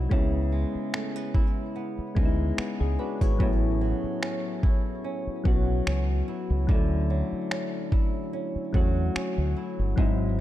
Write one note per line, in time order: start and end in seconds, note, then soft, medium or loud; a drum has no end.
0.00 0.11 G#2 medium
0.00 0.13 F#3 medium
0.00 0.20 F#3 medium
0.00 0.13 C4 medium
0.00 0.20 C4 medium
0.00 0.14 D#4 medium
0.00 1.34 E4 medium
0.00 0.13 F#4 medium
0.09 0.64 C#2 loud
0.09 3.40 C#3 medium
0.09 1.19 G#3 medium
0.09 1.19 B3 medium
0.09 1.20 C#4 medium
0.09 1.20 E4 medium
0.09 kick loud
0.52 2.16 G#3 medium
0.75 muted fingered electric bass stroke soft
0.93 1.16 A3 medium
0.93 finger snap loud
1.16 1.74 B3 medium
1.35 2.98 E4 medium
1.35 kick medium
1.76 2.57 B3 medium
1.98 muted fingered electric bass stroke soft
2.15 2.51 D2 medium
2.15 2.96 G#3 medium
2.15 3.49 G#3 medium
2.15 2.58 B3 medium
2.15 2.58 C#4 medium
2.15 2.25 D#4 medium
2.15 kick medium
2.25 2.57 E4 medium
2.58 3.49 B3 medium
2.58 2.79 B3 soft
2.58 2.79 E4 medium
2.58 finger snap loud
2.58 muted fingered electric bass stroke soft
2.80 2.96 C#2 medium
2.80 2.98 C#4 medium
2.80 2.98 G#4 medium
2.99 3.21 D4 medium
2.99 3.21 F#4 medium
2.99 3.20 B4 medium
3.21 3.37 G#1 medium
3.21 3.49 E4 medium
3.21 3.61 G#4 medium
3.21 3.60 C#5 medium
3.21 kick medium
3.39 3.92 A1 loud
3.39 6.69 A2 medium
3.39 4.48 F#3 medium
3.39 4.48 B3 medium
3.39 4.49 C#4 medium
3.39 4.50 E4 medium
3.39 kick loud
3.81 5.45 F#3 medium
4.04 muted fingered electric bass stroke soft
4.22 5.04 C#4 medium
4.22 finger snap loud
4.63 6.28 E4 medium
4.63 kick medium
5.04 5.86 C#4 medium
5.27 muted fingered electric bass stroke soft
5.44 5.79 B1 medium
5.44 6.25 F#3 medium
5.44 7.10 F#3 medium
5.44 6.26 B3 medium
5.44 6.26 C#4 medium
5.44 6.27 F#4 medium
5.44 kick medium
5.87 6.21 C#2 medium
5.87 7.51 C#4 medium
5.87 finger snap loud
6.28 7.13 E4 medium
6.50 6.66 C#2 medium
6.67 7.21 D2 loud
6.67 9.98 D3 medium
6.67 7.76 F#3 medium
6.67 7.77 A3 medium
6.67 7.78 C#4 medium
6.67 7.78 E4 medium
6.67 kick loud
7.10 8.74 F#3 medium
7.32 muted fingered electric bass stroke soft
7.51 8.32 C#4 medium
7.51 finger snap loud
7.92 9.56 E4 medium
7.92 kick medium
8.33 9.14 C#4 medium
8.56 muted fingered electric bass stroke soft
8.73 9.08 E2 medium
8.73 9.54 F#3 medium
8.73 10.38 F#3 medium
8.73 9.54 A3 medium
8.73 9.55 C#4 medium
8.73 9.56 F#4 medium
8.73 kick medium
9.15 10.06 C#4 medium
9.15 finger snap loud
9.15 muted fingered electric bass stroke soft
9.38 9.53 D2 medium
9.56 10.40 E4 medium
9.79 9.95 G1 medium
9.96 10.40 G#1 loud
9.96 10.40 G#2 medium
9.96 10.40 F#3 medium
9.96 10.40 C4 medium
9.96 10.40 D#4 medium
9.96 10.40 E4 medium
9.96 kick loud